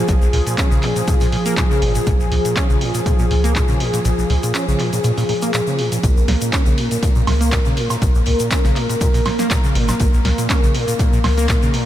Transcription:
Already playing: F3 G#4
0.08 A#1 A#2, kick, closed hi-hat, shaker
0.22 A#1, shaker
0.33 C#2 A#2, open hi-hat
0.46 A#2, closed hi-hat, shaker
0.58 C#4, kick, clap, closed hi-hat, shaker
0.71 A#1 C#3, shaker
0.83 A#2, clap, open hi-hat
0.96 A#2, closed hi-hat, shaker
1.08 A#2, kick, closed hi-hat, shaker
1.20 A#2, open hi-hat, shaker
1.32 A#2, open hi-hat
1.46 A#3, closed hi-hat, shaker
1.57 A#2, kick, clap, closed hi-hat, shaker
1.71 C#3, shaker
1.82 G#1 A#2, open hi-hat
1.95 A#2, closed hi-hat, shaker
2.07 A#1 A#2, kick, closed hi-hat, shaker
2.20 A#1, shaker
2.32 C#2 A#2, open hi-hat
2.45 A#2, closed hi-hat, shaker
2.56 C#4, kick, clap, closed hi-hat, shaker
2.70 A#1 C#3, shaker
2.81 A#2, open hi-hat
2.94 A#2, closed hi-hat, shaker
3.06 A#2, kick, closed hi-hat, shaker
3.19 A#2, shaker
3.31 C#2 A#2, open hi-hat
3.44 A#3, closed hi-hat, shaker
3.55 A#2, kick, clap, closed hi-hat, shaker
3.68 A#2 C#3, shaker
3.80 A#2, open hi-hat
3.94 A#2, closed hi-hat, shaker
4.05 A#1 A#2, closed hi-hat, shaker
4.18 A#1, shaker
4.30 C#2 A#2, open hi-hat
4.43 A#2, closed hi-hat, shaker
4.55 C#4, clap, closed hi-hat, shaker
4.68 A#1 C#3, shaker
4.79 A#2, clap, open hi-hat
4.93 A#2, closed hi-hat, shaker
5.04 A#2, closed hi-hat, shaker
5.17 A#2, open hi-hat, shaker
5.29 A#2, open hi-hat
5.42 A#3, closed hi-hat, shaker
5.54 A#2, clap, closed hi-hat, shaker
5.67 C#3, shaker
5.79 A#2, open hi-hat
5.92 A#2, closed hi-hat, shaker
6.03 A#1 A#2 A#3 A#4, kick, closed hi-hat, ride, shaker
6.17 A#1, shaker
6.28 C#2 A#2, snare, open hi-hat, ride
6.41 A#2, closed hi-hat, shaker
6.53 C#4, kick, snare, clap, closed hi-hat, ride, shaker
6.66 A#1 C#3, ride, shaker
6.78 A#2, open hi-hat, ride
6.91 A#2, closed hi-hat, shaker
7.03 A#2, kick, closed hi-hat, ride, shaker
7.15 A#2, shaker
7.27 C#2 A#2, snare, open hi-hat, high woodblock
7.41 A#3, closed hi-hat, shaker
7.52 A#2, kick, snare, clap, closed hi-hat, ride, shaker
7.65 A#2 C#3, shaker
7.77 A#2, open hi-hat, ride
7.90 A#2, snare, closed hi-hat, high woodblock, shaker
8.02 A#1 A#2, kick, closed hi-hat, ride, shaker
8.15 A#1, shaker
8.26 C#2 A#2, open hi-hat, ride
8.40 A#2, closed hi-hat, shaker
8.51 C#4, kick, snare, clap, closed hi-hat, ride, shaker
8.64 A#1 C#3, snare, shaker
8.76 A#2, clap, open hi-hat, ride
8.89 A#2, closed hi-hat, ride, shaker
9.01 A#2, kick, closed hi-hat, ride, shaker
9.14 A#2, open hi-hat, shaker
9.25 A#2, snare, open hi-hat, ride, high woodblock
9.39 A#3, snare, closed hi-hat, shaker
9.50 A#2, kick, snare, clap, closed hi-hat, ride, shaker
9.64 C#3, shaker
9.75 G#1 A#2, snare, open hi-hat, ride
9.88 A#2, snare, closed hi-hat, high woodblock, shaker
9.99 A#1 A#2, kick, closed hi-hat, ride, shaker
10.13 A#1, shaker
10.25 C#2 A#2, snare, open hi-hat, ride
10.38 A#2, closed hi-hat, shaker
10.50 C#4, kick, snare, clap, closed hi-hat, ride, shaker
10.63 A#1 C#3, ride, shaker
10.75 A#2, open hi-hat, ride
10.88 A#2, closed hi-hat, shaker
10.99 A#2, kick, closed hi-hat, ride, shaker
11.13 A#2, shaker
11.24 C#2 A#2, snare, open hi-hat, high woodblock
11.37 A#3, closed hi-hat, shaker
11.48 A#2, kick, snare, clap, closed hi-hat, ride, shaker
11.62 A#2 C#3, shaker
11.74 A#2, open hi-hat, ride

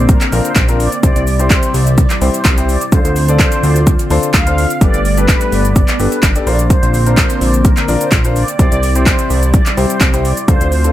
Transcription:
Already playing: A#1 D3 A#3 C4
0.09 A#4, kick, closed hi-hat, shaker
0.21 clap, closed hi-hat, shaker
0.32 A#1 C4 D4 F4 A#4, open hi-hat, shaker
0.45 C5, closed hi-hat, shaker
0.56 A#1, kick, clap, closed hi-hat, shaker
0.68 C4 D4 F4 A#4, closed hi-hat, shaker
0.80 D5, open hi-hat, shaker
0.92 closed hi-hat, shaker
1.03 C2 C3 G3 C4 E4 G4 C5 D5, kick, closed hi-hat, shaker
1.16 C2, closed hi-hat, shaker
1.27 open hi-hat, shaker
1.39 C4 E4 G4 C5, closed hi-hat, shaker
1.50 C5, kick, clap, closed hi-hat, shaker
1.63 closed hi-hat, shaker
1.74 C2 D5, open hi-hat, shaker
1.87 closed hi-hat, shaker
1.98 D5, kick, closed hi-hat, shaker
2.10 clap, closed hi-hat, shaker
2.21 C2 C4 E4 G4 C5, open hi-hat, shaker
2.34 C5, closed hi-hat, shaker
2.45 C2, kick, clap, closed hi-hat, shaker
2.58 C4 E4 G4 C5, closed hi-hat, shaker
2.69 D5, open hi-hat, shaker
2.81 closed hi-hat, shaker
2.92 D2 D3 C4 D4 F4 A4 C5, kick, closed hi-hat, shaker
3.05 D2, closed hi-hat, shaker
3.16 open hi-hat, shaker
3.28 D4 F4 A4 D5, closed hi-hat, shaker
3.39 C5, kick, clap, closed hi-hat, shaker
3.52 closed hi-hat, shaker
3.63 D2 D5, open hi-hat, shaker
3.76 closed hi-hat, shaker
3.87 kick, closed hi-hat, shaker
3.99 closed hi-hat, shaker
4.10 D2 D4 F4 A4 C5, open hi-hat, shaker
4.23 closed hi-hat, shaker
4.34 D2 F5, kick, clap, closed hi-hat, shaker
4.47 D4 F4 A4 C5, closed hi-hat, shaker
4.58 open hi-hat, shaker
4.70 closed hi-hat, shaker
4.81 G1 G3 A3 B3 D4 G4 A4 B4 D5, kick, closed hi-hat, shaker
4.94 G1, closed hi-hat, shaker
5.05 open hi-hat, shaker
5.17 D4 G4 A4 B4, closed hi-hat, shaker
5.28 B4, kick, clap, closed hi-hat, shaker
5.41 closed hi-hat, shaker
5.52 G1 D5, open hi-hat, shaker
5.65 closed hi-hat, shaker
5.76 D5, kick, closed hi-hat, shaker
5.88 clap, closed hi-hat, shaker
5.99 G1 D4 G4 A4 B4, open hi-hat, shaker
6.12 B4, closed hi-hat, shaker
6.23 G1, kick, clap, closed hi-hat, shaker
6.35 D4 G4 A4 D5, closed hi-hat, shaker
6.46 A#1 D3 A#3 C4 D4 F4 A#4 C5 D5, open hi-hat, shaker
6.59 closed hi-hat, shaker
6.70 C5, kick, closed hi-hat, shaker
6.83 A#1, closed hi-hat, shaker
6.94 open hi-hat, shaker
7.06 D4 F4 A#4 C5, closed hi-hat, shaker
7.17 C5, kick, clap, closed hi-hat, shaker
7.30 closed hi-hat, shaker
7.41 A#1 D5, open hi-hat, shaker
7.54 closed hi-hat, shaker
7.64 A#4, kick, closed hi-hat, shaker
7.77 clap, closed hi-hat, shaker
7.88 A#1 D4 F4 A#4 D5, open hi-hat, shaker
8.01 C5, closed hi-hat, shaker
8.12 A#1, kick, clap, closed hi-hat, shaker
8.24 D4 F4 A#4 C5, closed hi-hat, shaker
8.36 D5, open hi-hat, shaker
8.48 closed hi-hat, shaker
8.59 C2 C3 G3 C4 E4 G4 C5 D5, kick, closed hi-hat, shaker
8.72 C2, closed hi-hat, shaker
8.83 open hi-hat, shaker
8.95 C4 E4 G4 C5, closed hi-hat, shaker
9.06 C5, kick, clap, closed hi-hat, shaker
9.19 closed hi-hat, shaker
9.30 C2 D5, open hi-hat, shaker
9.43 closed hi-hat, shaker
9.54 D5, kick, closed hi-hat, shaker
9.66 clap, closed hi-hat, shaker
9.77 C2 C4 E4 G4 C5, open hi-hat, shaker
9.90 C5, closed hi-hat, shaker
10.01 C2, kick, clap, closed hi-hat, shaker
10.13 C4 E4 G4 C5, closed hi-hat, shaker
10.25 D5, open hi-hat, shaker
10.37 closed hi-hat, shaker
10.48 D2 D3 C4 D4 F4 A4 C5, kick, closed hi-hat, shaker
10.61 D2, closed hi-hat, shaker
10.72 open hi-hat, shaker
10.84 D4 F4 A4 C5, closed hi-hat, shaker

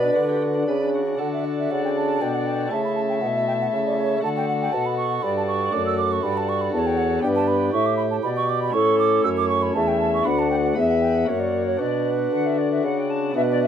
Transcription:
Already playing: B2 B4 D5
0.02 D4
0.15 D3 F#4
0.29 G4
0.41 F#4
0.55 D4
0.67 C#3 B4
0.81 D4
0.94 F#4
1.07 D4
1.15 D4 F#4 A4 F#5
1.19 D3
1.33 E5
1.45 D5
1.59 E5
1.70 C#3 D5 F#5
1.85 G5
1.97 A5
2.21 B2 G5
2.35 F#5
2.47 G5
2.68 A3 E4 A4 A5
2.72 C#3 E5
2.85 B5
2.96 A5
3.09 G5
3.21 B2 F#5
3.35 E5
3.48 G5
3.62 F#5
3.73 C#3 E5
3.86 D5
3.99 C#5
4.19 A3 F#4 A4
4.23 D3 F#5 A5
4.37 G5
4.48 F#5
4.62 G5
4.73 B2 A5
4.86 B5
4.98 C#6
5.22 G2 D5 B5
5.37 A5
5.48 C#6
5.69 A3 F#4 A4 D6
5.73 F#2
5.86 E6
5.98 D6
6.12 C#6
6.23 G2 D5 B5
6.37 A5
6.49 C#6
6.61 B5
6.73 E2 D5 A5
6.78 C#5
6.87 G5
6.97 F#5
7.19 B3 D4 G4 G5
7.23 G2 B4
7.36 A5
7.47 B5
7.72 A2 E5 C#6
7.86 D6
7.97 B5
8.11 A5
8.23 B2 D5 B5
8.37 C#6
8.49 D6
8.62 B5
8.69 A3 C#4 E4
8.73 A2 A4 C#6
8.99 D6
9.24 F#2 C#5 E6
9.37 D6
9.49 C#6
9.63 B5
9.74 E2 E5 A5
9.88 G5
10.00 A5
10.14 C#6
10.21 A3 D4 F#4
10.25 D2 F#5 B5
10.39 A5
10.51 G5
10.64 F#5
10.74 E2 B3 B4 E5
10.89 F#5
11.01 G5
11.15 F#5
11.24 A#3 F#4
11.28 F#2 C#5 E5
11.40 D5
11.67 C#5
11.77 B2 D4 F#4 B4 D5
12.32 D3 F#5
12.45 E5
12.57 D5
12.71 E5
12.84 C#3 F#5
12.97 G5
13.09 A5
13.31 B3 D4 F#4
13.35 B2 B4 E5
13.50 D5
13.62 E5

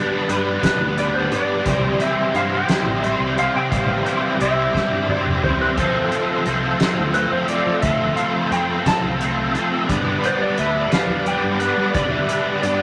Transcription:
Already playing: G3 B3 G4 B4 D5 B5
0.00 D4
0.28 G2 G3 B3 D4 B4, closed hi-hat
0.63 B3 D4 B4, kick, snare, closed hi-hat
0.80 D2
0.97 G3 B3 D4 B4 D5, closed hi-hat
1.14 C5
1.32 G2 B3 D4 B4 D5, closed hi-hat
1.65 C2 C3 E3 G3 C4 E4 C5 G5 C6, kick, closed hi-hat
1.70 C5
2.00 G3 C4 E4 C5 E5, closed hi-hat
2.34 G2 G3 C4 E4 C5 F5, closed hi-hat
2.53 G5
2.69 G3 C4 E4 C5, snare, closed hi-hat
2.86 A1
3.03 G3 C4 E4 C5 E5, closed hi-hat
3.20 C2
3.37 G3 C4 E4 C5 F5, closed hi-hat
3.56 C3 G5
3.70 A1 C3 E3 G3 C4 F5 D6, kick, closed hi-hat
3.75 E4 C5
4.05 G3 C4 E4 C5, closed hi-hat
4.39 C2 G3 C4 E4 C5 E5, closed hi-hat
4.73 G3 C4 E4 C5, kick, snare
4.92 G2
5.07 G3 C4 E4 C5 D5, high tom
5.26 mid tom
5.42 C3 G3 C4 E4 C5, mid tom
5.62 B4
5.76 F2 F3 A3 C4 F4 A4 C5 C6, kick, closed hi-hat, crash
6.11 C4 F4 A4, closed hi-hat
6.45 C2 A3 C4 F4 A4, closed hi-hat
6.79 C4 F4 A4, snare, closed hi-hat
6.98 D2
7.14 A3 C4 F4 A4 B4, closed hi-hat
7.31 F2 C5
7.48 C4 F4 A4 D5, closed hi-hat
7.66 F3
7.82 D2 F3 A3 C4 F4 A4 E5 B5, kick, closed hi-hat
8.16 F4 A4 F5, closed hi-hat
8.21 C4
8.51 F2 A3 C4 F4 G5, closed hi-hat
8.55 A4
8.85 C4 F4 A4 A5, kick, snare, closed hi-hat
9.04 C2 F5
9.20 A3 C4 F4 A4, closed hi-hat
9.54 F3 C4 F4 A4, closed hi-hat
9.88 G2 G3 B3 D4 G4 B4 D5 B5 D6, kick, closed hi-hat
10.22 B3 D4 B4 C5, closed hi-hat
10.42 D5
10.57 D2 G3 B3 D4 B4 E5, closed hi-hat
10.91 B3 D4 B4 F5, snare, closed hi-hat
11.09 E2
11.25 G3 B3 D4 B4 G5, closed hi-hat
11.43 G2
11.59 B3 D4 B4, closed hi-hat
11.77 G3
11.93 E2 G3 B3 D4 B4 D5, kick, closed hi-hat
12.11 E5
12.28 B3 D4 B4, closed hi-hat
12.62 G2 G3 B3 D4 B4 D5, closed hi-hat

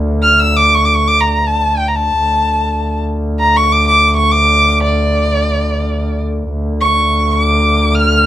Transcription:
Already playing: D2
0.23 F6
0.40 E6
0.57 D6
0.75 C#6
0.85 D6
0.96 C#6
1.08 D6
1.21 A#5
1.47 A5
1.77 G5
1.88 A#5
1.96 A5
2.17 D2
3.39 A#5
3.56 C#6
3.72 D6
3.88 D6
4.17 C#6
4.31 D6
4.84 D5
6.49 D2
6.81 C#6
7.32 D6
7.95 F6

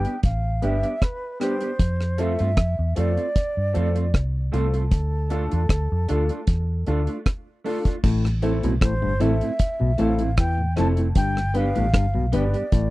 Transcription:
Already playing: G5
0.05 B3 D4 G4, closed hi-hat
0.23 A1 F5, kick, closed hi-hat
0.62 G1 G3 B3 D4 G4 E5, closed hi-hat
0.83 B3 D4 G4, closed hi-hat
1.02 B4, kick, cross-stick, closed hi-hat
1.40 G3 B3 D4 G4 C5, cross-stick, closed hi-hat
1.61 B3 D4 G4, closed hi-hat
1.79 F2, kick, closed hi-hat
2.01 cross-stick
2.18 A3 C4 F4 A4 E5, closed hi-hat
2.39 G2 A3 C4 F4, closed hi-hat
2.57 F2, kick, cross-stick, closed hi-hat
2.79 E2
2.95 F2 A3 C4 F4 A4 D5, closed hi-hat
3.17 A3 C4 F4, closed hi-hat
3.36 kick, closed hi-hat
3.57 G2
3.73 F2 A3 C4 F4 A4, closed hi-hat
3.95 A3 C4 F4, closed hi-hat
4.14 C2, kick, cross-stick, closed hi-hat
4.52 C2 A3 C4 F4 A4, closed hi-hat
4.73 A3 C4 F4, closed hi-hat
4.91 D2, kick, closed hi-hat
5.30 A3 D4 F4 A4, closed hi-hat
5.51 E2 A3 D4 F4, closed hi-hat
5.69 D2, kick, cross-stick, closed hi-hat
5.92 F2
6.08 D2 A3 D4 F4 A4, closed hi-hat
6.29 A3 D4 F4, closed hi-hat
6.47 E2, kick, closed hi-hat
6.87 D2 A3 D4 F4 A4, closed hi-hat
7.07 A3 D4 F4, closed hi-hat
7.26 kick, cross-stick, closed hi-hat
7.64 A3 D4 F4 A4, open hi-hat
7.85 A3 D4 F4, kick, closed hi-hat
8.04 A1 A2, kick, crash
8.24 A2, cross-stick
8.42 E3 A3 C4 E4 A4, closed hi-hat
8.63 B1 A2 B2 A3 C4 E4, closed hi-hat
8.81 A1 A2 C5, kick, cross-stick, closed hi-hat
9.02 G1 G2 A2
9.20 A1 A2 E3 A3 C4 E4 A4 E5, closed hi-hat
9.41 A2 A3 C4 E4, closed hi-hat
9.59 kick, closed hi-hat
9.80 B1 A2 B2
9.98 A1 A2 E3 A3 C4 E4 A4 F5, closed hi-hat
10.18 A2 A3 C4 E4, closed hi-hat
10.37 E2 E3 G5, kick, cross-stick, closed hi-hat
10.58 A2
10.76 F1 F2 E3 A3 C4 E4 A4 A5, cross-stick, closed hi-hat
10.97 A3 C4 E4, closed hi-hat
11.15 G1 G2 G5, kick, closed hi-hat
11.36 G2, cross-stick
11.54 D3 G3 B3 D4 G4 B4 F5, closed hi-hat
11.75 A1 G2 A2 B3 D4 G4, closed hi-hat
11.94 G1 G2, kick, cross-stick, closed hi-hat
12.14 B1 G2 B2
12.32 G1 G2 D3 G3 B3 D4 G4 B4 D5, closed hi-hat
12.54 G2 B3 D4 G4, closed hi-hat
12.72 A1 A2, kick, closed hi-hat

